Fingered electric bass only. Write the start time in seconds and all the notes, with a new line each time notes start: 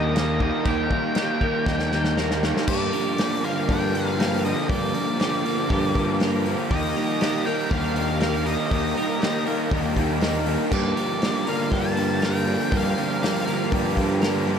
Already playing: D#2
0.65 D#2
1.66 D#2
2.68 G2
3.68 G2
4.70 G2
5.70 G2
6.70 D#2
7.71 D#2
8.71 D#2
9.71 D#2
10.71 G2
11.72 G2
12.72 G2
13.72 G2